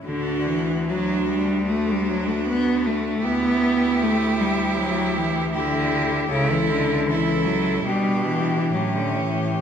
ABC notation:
X:1
M:4/4
L:1/16
Q:1/4=78
K:D
V:1 name="Cello"
F4 F4 F8 | G12 G4 | A4 A4 G4 G4 |]
V:2 name="Cello"
D4 D4 D8 | E12 E4 | E4 E4 D4 C4 |]
V:3 name="Cello" clef=bass
D,2 E,2 F,2 G,2 A, G, F, A, B,2 A,2 | B,4 A,2 G,2 F,2 E,2 D,4 | C, E, D,2 E,2 F,2 G,2 E,2 F, D, E,2 |]
V:4 name="Cello" clef=bass
D,,16 | D,,16 | C,,8 B,,4 A,,4 |]